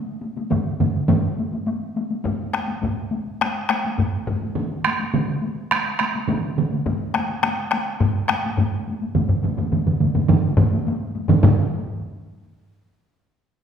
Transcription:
0.21 taiko high medium
0.36 taiko high medium
0.50 taiko low-mid medium
0.50 taiko mid medium
0.50 taiko high medium
0.80 taiko low-mid medium
0.80 taiko mid medium
0.80 taiko high medium
1.08 taiko low-mid loud
1.08 taiko mid loud
1.08 taiko high medium
1.38 taiko high medium
1.52 taiko high medium
1.66 taiko high medium
1.96 taiko high medium
2.10 taiko high medium
2.25 taiko low-mid medium
2.25 taiko high medium
2.53 taiko rim medium
2.53 taiko high medium
2.68 taiko high medium
2.82 taiko low-mid medium
2.82 taiko high medium
3.11 taiko high medium
3.41 taiko rim medium
3.41 taiko high medium
3.70 taiko rim medium
3.70 taiko high medium
3.85 taiko high medium
3.98 taiko low-mid medium
3.98 taiko high medium
4.28 taiko low-mid loud
4.28 taiko high medium
4.41 taiko high soft
4.56 taiko mid loud
4.56 taiko high medium
4.84 taiko rim medium
4.84 taiko high medium
4.99 taiko high medium
5.14 taiko mid medium
5.14 taiko high medium
5.42 taiko high medium
5.71 taiko rim medium
5.71 taiko high medium
5.99 taiko rim medium
5.99 taiko high soft
6.15 taiko high soft
6.29 taiko mid loud
6.29 taiko high medium
6.57 taiko mid medium
6.57 taiko high soft
6.72 taiko high soft
6.86 taiko low-mid loud
6.86 taiko high medium
7.14 taiko rim medium
7.14 taiko high medium
7.29 taiko high medium
7.43 taiko rim medium
7.43 taiko high medium
7.71 taiko rim medium
7.71 taiko high medium
8.00 taiko low-mid loud
8.00 taiko high medium
8.29 taiko rim medium
8.29 taiko high medium
8.45 taiko high soft
8.57 taiko low-mid loud
8.57 taiko high medium
8.88 taiko high soft
9.01 taiko high soft
9.15 taiko low-mid medium
9.15 taiko mid medium
9.15 taiko high medium
9.29 taiko low-mid medium
9.29 taiko mid medium
9.43 taiko low-mid medium
9.43 taiko mid medium
9.43 taiko high medium
9.57 taiko low-mid medium
9.57 taiko mid medium
9.57 taiko high medium
9.72 taiko low-mid medium
9.72 taiko mid medium
9.72 taiko high medium
9.86 taiko low-mid medium
9.86 taiko mid medium
10.00 taiko low-mid medium
10.00 taiko mid medium
10.00 taiko high medium
10.15 taiko low-mid medium
10.15 taiko mid medium
10.15 taiko high medium
10.29 taiko low-mid loud
10.29 taiko mid loud
10.29 taiko high medium
10.57 taiko low-mid loud
10.57 taiko mid medium
10.57 taiko high medium
10.73 taiko high medium
10.87 taiko high medium
11.15 taiko high medium
11.28 taiko low-mid loud
11.28 taiko mid loud
11.28 taiko high medium
11.43 taiko low-mid loud
11.43 taiko mid loud
11.43 taiko high medium

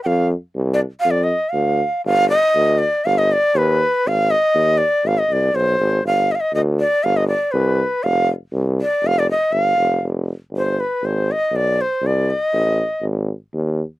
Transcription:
0.03 0.33 F2 loud
0.03 0.27 F5 medium
0.03 0.08 G5 medium
0.55 0.82 C2 loud
0.74 0.80 D5 medium
1.00 1.12 F5 loud
1.05 1.32 F2 medium
1.11 1.25 D5 medium
1.24 1.51 D#5 medium
1.50 1.81 D2 medium
1.50 2.02 F5 medium
2.05 2.32 G1 loud
2.05 2.28 F5 loud
2.29 2.80 D#5 loud
2.55 2.82 D2 loud
2.78 3.07 D5 loud
3.05 3.32 G1 medium
3.05 3.20 F5 loud
3.18 3.34 D#5 medium
3.32 3.58 D5 loud
3.55 3.82 D#2 loud
3.55 4.09 B4 medium
4.05 4.32 G#1 medium
4.05 4.32 F5 loud
4.31 4.79 D#5 medium
4.54 4.82 D#2 medium
4.78 5.08 D5 medium
5.05 5.18 G#1 loud
5.05 5.20 F5 medium
5.18 5.34 D#5 medium
5.30 5.51 C2 medium
5.30 5.57 D5 medium
5.54 5.76 B1 medium
5.54 6.04 C5 medium
5.80 6.01 G#1 medium
6.04 6.31 G1 medium
6.04 6.33 F5 medium
6.31 6.37 D#5 medium
6.31 6.42 F5 medium
6.40 6.53 D#5 medium
6.54 6.81 D2 loud
6.54 6.61 D#5 medium
6.80 7.05 D5 medium
7.04 7.31 G1 loud
7.04 7.18 F5 medium
7.17 7.27 D#5 medium
7.28 7.53 D5 medium
7.52 7.81 C2 loud
7.52 8.05 B4 medium
8.03 8.31 F1 loud
8.03 8.28 F5 medium
8.52 8.80 C2 loud
8.81 9.08 D5 medium
9.02 9.30 F1 medium
9.07 9.20 F5 loud
9.19 9.29 D5 medium
9.31 9.54 D#5 medium
9.51 9.75 G1 medium
9.51 10.03 F5 medium
9.77 10.00 F1 medium
10.03 10.30 F1 medium
10.51 10.79 G1 medium
10.57 10.81 C5 medium
10.80 11.07 B4 medium
11.02 11.30 G#1 medium
11.02 11.33 C5 medium
11.31 11.57 D#5 medium
11.51 11.80 B1 medium
11.56 11.83 D5 medium
11.81 12.08 C5 medium
12.02 12.30 C2 medium
12.06 12.32 D5 medium
12.30 13.05 D#5 medium
12.53 12.81 A1 medium
13.01 13.30 G#1 medium
13.53 13.81 D#2 medium

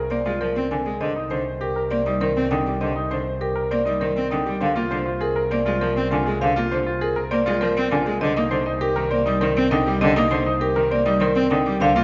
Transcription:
0.00 0.85 C2 medium
0.00 0.16 A#4 medium
0.11 0.22 A#3 medium
0.11 0.31 C5 medium
0.11 0.31 D5 medium
0.26 0.37 G#3 medium
0.26 0.46 F4 medium
0.41 0.52 F3 medium
0.41 0.61 A#4 medium
0.41 0.61 C5 medium
0.56 0.76 C4 medium
0.56 0.67 C4 medium
0.71 0.83 D3 medium
0.71 0.91 G#5 medium
0.86 0.97 G#3 medium
0.86 1.06 G#4 medium
1.01 4.45 C2 medium
1.01 1.12 D3 medium
1.01 1.20 C5 medium
1.01 1.21 D#5 medium
1.16 1.36 D#4 medium
1.31 1.42 D3 medium
1.31 1.51 C5 medium
1.61 1.81 G4 medium
1.61 1.81 A#4 medium
1.76 1.96 A#4 medium
1.91 2.02 A#3 medium
1.91 2.11 C5 medium
1.91 2.11 D5 medium
2.06 2.17 G3 medium
2.06 2.26 D#4 medium
2.21 2.32 D#3 medium
2.21 2.41 A#4 medium
2.21 2.41 C5 medium
2.36 2.47 C4 medium
2.36 2.56 C4 medium
2.51 2.62 D3 medium
2.51 2.71 D#4 medium
2.51 2.71 G5 medium
2.66 2.78 G3 medium
2.66 2.86 G4 medium
2.81 2.92 D3 medium
2.81 3.01 C5 medium
2.81 3.01 D#5 medium
2.96 3.16 D#4 medium
3.11 3.23 D3 medium
3.11 3.31 C5 medium
3.41 3.61 G4 medium
3.41 3.61 A#4 medium
3.56 3.75 A#4 medium
3.71 3.83 A#3 medium
3.71 3.91 C5 medium
3.71 3.91 D5 medium
3.85 3.98 G3 medium
3.85 4.05 D#4 medium
4.00 4.13 D#3 medium
4.00 4.21 A#4 medium
4.00 4.20 C5 medium
4.16 4.36 C4 medium
4.16 4.28 C4 medium
4.30 4.43 D3 medium
4.30 4.50 D#4 medium
4.30 4.51 G5 medium
4.45 4.57 G3 medium
4.45 4.65 G4 medium
4.60 8.05 C2 medium
4.60 4.72 D3 loud
4.60 4.80 C5 medium
4.60 4.81 F5 medium
4.76 4.87 A#3 medium
4.76 4.96 F4 medium
4.91 5.02 D3 medium
4.91 5.11 C5 medium
5.06 5.26 F4 medium
5.21 5.41 G#4 medium
5.21 5.41 A#4 medium
5.36 5.56 A#4 medium
5.51 5.62 A#3 medium
5.51 5.71 C5 medium
5.51 5.71 D5 medium
5.66 5.78 G#3 medium
5.66 5.86 F4 medium
5.81 5.93 F3 medium
5.81 6.01 A#4 medium
5.81 6.01 C5 medium
5.96 6.16 C4 medium
5.96 6.08 C4 medium
6.11 6.23 D3 medium
6.11 6.31 F4 medium
6.11 6.31 G#5 medium
6.26 6.38 G#3 medium
6.26 6.46 G#4 medium
6.41 6.53 D3 loud
6.41 6.61 C5 medium
6.41 6.61 F5 loud
6.56 6.68 A#3 medium
6.56 6.76 F4 loud
6.71 6.83 D3 medium
6.71 6.91 C5 medium
6.86 7.06 F4 medium
7.01 7.21 G#4 loud
7.01 7.21 A#4 medium
7.16 7.36 A#4 medium
7.31 7.43 A#3 medium
7.31 7.51 C5 medium
7.31 7.51 D5 medium
7.46 7.58 G#3 medium
7.46 7.66 F4 loud
7.61 7.73 F3 medium
7.61 7.81 A#4 medium
7.61 7.81 C5 medium
7.76 7.96 C4 medium
7.76 7.88 C4 loud
7.91 8.03 D3 medium
7.91 8.11 F4 medium
7.91 8.11 G#5 medium
8.06 8.18 G#3 medium
8.06 8.26 G#4 medium
8.21 11.65 C2 medium
8.21 8.33 D3 loud
8.21 8.41 C5 medium
8.21 8.41 D#5 loud
8.36 8.48 A#3 medium
8.36 8.56 D#4 medium
8.51 8.63 D3 medium
8.51 8.71 C5 medium
8.66 8.86 D#4 medium
8.81 9.01 G4 loud
8.81 9.01 A#4 medium
8.96 9.08 D#3 medium
8.96 9.16 A#4 medium
9.11 9.23 A#3 medium
9.11 9.30 C5 medium
9.11 9.31 D5 medium
9.26 9.38 G3 medium
9.26 9.46 D#4 medium
9.41 9.53 D#3 medium
9.41 9.61 A#4 medium
9.41 9.61 C5 medium
9.56 9.76 C4 medium
9.56 9.68 C4 loud
9.71 9.83 D3 medium
9.71 9.91 D#4 loud
9.71 9.91 G5 medium
9.86 9.98 G3 medium
9.86 10.06 G4 medium
10.01 10.13 D3 loud
10.01 10.21 C5 medium
10.01 10.21 D#5 loud
10.16 10.27 A#3 medium
10.16 10.36 D#4 loud
10.31 10.42 D3 medium
10.31 10.51 C5 loud
10.31 10.51 C5 medium
10.46 10.66 D#4 medium
10.61 10.81 G4 loud
10.61 10.81 A#4 medium
10.76 10.87 D#3 medium
10.76 10.96 A#4 medium
10.91 11.02 A#3 loud
10.91 11.11 C5 medium
10.91 11.11 D5 loud
11.06 11.17 G3 medium
11.06 11.26 D#4 loud
11.20 11.32 D#3 medium
11.20 11.41 A#4 medium
11.20 11.41 C5 medium
11.35 11.47 C4 loud
11.35 11.56 C4 medium
11.50 11.62 D3 medium
11.50 11.71 D#4 medium
11.50 11.71 G5 medium
11.66 11.77 G3 medium
11.66 11.86 G4 medium
11.80 12.04 C2 medium
11.80 11.92 D3 loud
11.80 12.01 C5 medium
11.80 12.01 F5 loud
11.96 12.04 A#3 medium
11.96 12.04 F4 loud

